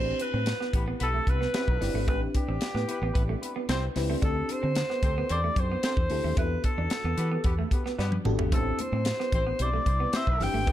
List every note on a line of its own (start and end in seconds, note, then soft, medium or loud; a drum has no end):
0.00 0.12 A1 loud
0.00 0.95 C4 medium
0.00 0.95 D4 medium
0.00 0.95 E4 medium
0.00 0.95 G4 medium
0.00 0.95 B4 medium
0.00 0.23 C5 loud
0.20 0.75 B4 medium
0.20 muted clean electric guitar stroke soft
0.20 closed hi-hat medium
0.34 0.52 A2 medium
0.34 0.42 C4 medium
0.46 snare loud
0.46 closed hi-hat medium
0.60 0.68 B3 medium
0.60 snare soft
0.73 0.92 A1 medium
0.73 0.85 B3 medium
0.73 0.85 E4 medium
0.73 0.85 G4 medium
0.73 0.85 B4 medium
0.73 muted clean electric guitar stroke soft
0.73 kick medium
0.73 closed hi-hat medium
0.88 0.95 B3 medium
1.00 1.19 B1 medium
1.00 1.09 B3 medium
1.00 1.09 E4 medium
1.00 1.09 G4 medium
1.00 1.31 A4 loud
1.00 1.09 B4 medium
1.00 closed hi-hat medium
1.14 1.22 A3 medium
1.27 1.46 C2 medium
1.27 1.39 B3 medium
1.27 1.39 E4 medium
1.27 1.39 G4 medium
1.27 1.39 B4 medium
1.27 2.08 B4 medium
1.27 muted clean electric guitar stroke soft
1.27 kick medium
1.27 closed hi-hat medium
1.41 1.49 B3 medium
1.41 snare soft
1.54 1.88 B3 medium
1.54 1.62 C4 medium
1.54 1.89 E4 medium
1.54 1.88 G4 medium
1.54 1.88 B4 medium
1.54 snare loud
1.54 closed hi-hat medium
1.68 1.77 B1 medium
1.68 kick medium
1.80 1.90 G1 medium
1.80 2.06 C4 medium
1.80 2.06 D4 medium
1.80 2.07 E4 medium
1.80 2.07 G4 medium
1.80 2.07 D5 medium
1.80 muted clean electric guitar stroke soft
1.80 snare soft
1.80 open hi-hat medium
1.94 2.08 G#1 medium
1.94 2.03 A3 medium
2.07 2.27 A1 medium
2.07 2.16 A3 medium
2.07 3.09 C4 medium
2.07 3.09 D4 medium
2.07 3.10 E4 medium
2.07 3.10 G4 medium
2.07 3.10 B4 medium
2.07 2.21 B4 medium
2.07 kick loud
2.07 closed hi-hat medium
2.35 3.39 G4 medium
2.35 muted clean electric guitar stroke soft
2.35 kick medium
2.35 closed hi-hat medium
2.48 2.57 A1 medium
2.48 2.56 C4 medium
2.61 snare medium
2.61 closed hi-hat medium
2.74 2.84 A2 medium
2.74 2.83 B3 medium
2.74 snare soft
2.88 3.00 B3 medium
2.88 2.99 E4 medium
2.88 3.00 G4 medium
2.88 3.00 B4 medium
2.88 muted clean electric guitar stroke soft
2.88 closed hi-hat medium
3.02 3.11 A1 medium
3.02 3.10 B3 medium
3.14 3.34 A1 medium
3.14 3.23 B3 medium
3.14 3.23 E4 medium
3.14 3.23 G4 medium
3.14 3.23 B4 medium
3.14 kick medium
3.14 closed hi-hat medium
3.29 3.37 A3 medium
3.41 3.53 B3 medium
3.41 3.53 E4 medium
3.41 3.53 G4 medium
3.41 3.53 B4 medium
3.41 muted clean electric guitar stroke soft
3.41 closed hi-hat medium
3.56 3.63 B3 medium
3.68 3.87 C2 medium
3.68 3.85 C4 medium
3.68 3.77 C4 medium
3.68 3.85 E4 medium
3.68 3.86 G4 medium
3.68 3.85 C5 loud
3.68 snare loud
3.68 closed hi-hat medium
3.95 4.14 C#2 medium
3.95 4.21 C4 medium
3.95 4.21 D4 medium
3.95 4.21 E4 medium
3.95 4.21 G4 medium
3.95 4.22 B4 medium
3.95 muted clean electric guitar stroke soft
3.95 snare soft
3.95 open hi-hat medium
4.10 4.17 A3 medium
4.22 4.41 D2 loud
4.22 5.24 C4 medium
4.22 4.30 D4 medium
4.22 5.24 D4 medium
4.22 5.24 E4 medium
4.22 5.24 G4 medium
4.22 5.25 A4 medium
4.22 4.53 A4 medium
4.22 kick loud
4.22 closed hi-hat medium
4.49 5.33 C5 loud
4.49 muted clean electric guitar stroke soft
4.49 closed hi-hat medium
4.63 4.82 D3 medium
4.63 4.71 C4 medium
4.75 snare loud
4.75 closed hi-hat medium
4.90 4.98 B3 medium
4.90 snare soft
5.02 5.21 D2 medium
5.02 5.14 C4 medium
5.02 5.14 G4 medium
5.02 5.14 A4 medium
5.02 5.14 C5 medium
5.02 muted clean electric guitar stroke soft
5.02 kick medium
5.02 closed hi-hat medium
5.18 5.25 B3 medium
5.29 5.49 E2 medium
5.29 5.38 C4 medium
5.29 5.38 G4 medium
5.29 5.38 A4 medium
5.29 5.38 C5 loud
5.29 5.61 D5 loud
5.29 closed hi-hat medium
5.44 5.52 A3 medium
5.56 5.75 F#2 medium
5.56 5.68 C4 medium
5.56 5.68 G4 medium
5.56 5.68 A4 medium
5.56 5.68 C5 medium
5.56 6.38 C5 loud
5.56 muted clean electric guitar stroke soft
5.56 kick medium
5.56 closed hi-hat medium
5.72 5.79 B3 medium
5.82 6.00 C4 medium
5.82 5.92 C4 medium
5.82 6.00 G4 medium
5.82 6.00 A4 medium
5.82 6.00 C5 loud
5.82 snare loud
5.82 closed hi-hat medium
5.97 6.06 E2 medium
5.97 kick medium
6.10 6.19 D2 medium
6.10 6.35 C4 medium
6.10 6.36 D4 medium
6.10 6.36 E4 medium
6.10 6.36 G4 medium
6.10 6.36 A4 medium
6.10 muted clean electric guitar stroke soft
6.10 open hi-hat medium
6.24 6.33 D#2 medium
6.24 6.32 A3 medium
6.37 6.56 E2 medium
6.37 7.39 B3 medium
6.37 7.39 D4 medium
6.37 6.45 E4 medium
6.37 7.39 F#4 medium
6.37 7.39 G4 medium
6.37 7.39 A4 medium
6.37 6.63 B4 medium
6.37 kick loud
6.37 closed hi-hat medium
6.64 7.68 A4 medium
6.64 muted clean electric guitar stroke soft
6.64 kick medium
6.64 closed hi-hat medium
6.78 6.87 E2 medium
6.78 6.86 D4 medium
6.90 snare loud
6.90 closed hi-hat medium
7.04 7.13 E2 medium
7.04 7.13 B3 medium
7.17 7.36 E3 medium
7.17 7.29 B3 medium
7.17 7.29 G4 medium
7.17 7.29 B4 medium
7.17 muted clean electric guitar stroke soft
7.17 closed hi-hat medium
7.32 7.39 B3 medium
7.44 7.63 E2 medium
7.44 7.53 B3 medium
7.44 7.53 G4 medium
7.44 7.53 B4 medium
7.44 kick medium
7.44 closed hi-hat medium
7.59 7.66 A3 medium
7.71 7.83 B3 medium
7.71 7.83 G4 medium
7.71 7.83 B4 medium
7.71 muted clean electric guitar stroke soft
7.71 kick medium
7.71 closed hi-hat medium
7.86 7.93 B3 medium
7.86 snare soft
7.98 8.17 G2 medium
7.98 8.15 B3 medium
7.98 8.06 D4 medium
7.98 8.15 G4 medium
7.98 8.15 B4 medium
7.98 snare soft
8.12 high tom medium
8.25 8.52 G#1 medium
8.25 8.50 B3 medium
8.25 8.50 D4 medium
8.25 8.51 F#4 medium
8.25 8.51 G4 medium
8.25 8.51 A4 medium
8.25 muted clean electric guitar stroke soft
8.25 mid tom medium
8.39 8.46 A3 medium
8.39 floor tom medium
8.52 8.70 A1 medium
8.52 8.60 A3 medium
8.52 9.54 C4 medium
8.52 9.54 D4 medium
8.52 9.54 E4 medium
8.52 9.54 G4 medium
8.52 8.82 A4 medium
8.52 9.54 C5 medium
8.52 kick loud
8.52 closed hi-hat medium
8.52 muted conga soft
8.79 9.64 C5 medium
8.79 muted clean electric guitar stroke soft
8.79 closed hi-hat medium
8.79 high conga medium
8.92 9.11 A2 medium
8.92 9.01 C4 medium
9.05 snare loud
9.05 closed hi-hat medium
9.20 9.27 B3 medium
9.20 snare soft
9.32 9.51 A1 medium
9.32 9.44 C4 medium
9.32 9.44 E4 medium
9.32 9.44 G4 medium
9.32 9.44 C5 medium
9.32 muted clean electric guitar stroke soft
9.32 kick medium
9.32 closed hi-hat medium
9.32 low conga medium
9.47 9.54 B3 medium
9.59 9.78 B1 medium
9.59 9.69 C4 medium
9.59 9.69 E4 medium
9.59 9.69 G4 medium
9.59 9.69 C5 medium
9.59 10.18 D5 medium
9.59 closed hi-hat medium
9.59 muted conga soft
9.73 9.81 A3 medium
9.86 10.05 C2 medium
9.86 9.98 C4 medium
9.86 9.98 E4 medium
9.86 9.98 G4 medium
9.86 9.98 C5 medium
9.86 muted clean electric guitar stroke soft
9.86 kick medium
9.86 closed hi-hat medium
10.00 10.08 B3 medium
10.13 10.21 C4 medium
10.13 10.48 C4 loud
10.13 10.48 E4 medium
10.13 10.48 G4 medium
10.13 10.48 C5 loud
10.13 10.45 E5 medium
10.13 snare medium
10.13 closed hi-hat medium
10.13 high conga medium
10.27 10.36 B1 medium
10.27 kick medium
10.40 10.49 G1 loud
10.40 10.65 C4 medium
10.40 10.65 D4 medium
10.40 10.66 E4 medium
10.40 10.66 G4 medium
10.40 10.66 B4 medium
10.40 10.72 G5 loud
10.40 muted clean electric guitar stroke soft
10.40 snare soft
10.40 open hi-hat medium
10.40 low conga medium
10.53 10.68 G#1 medium
10.53 10.62 A3 medium
10.53 high conga medium
10.66 10.72 A1 medium
10.66 10.72 A3 medium
10.66 10.72 C4 medium
10.66 10.72 D4 medium
10.66 10.72 E4 medium
10.66 10.72 G4 medium
10.66 10.72 B4 medium
10.66 kick loud
10.66 closed hi-hat medium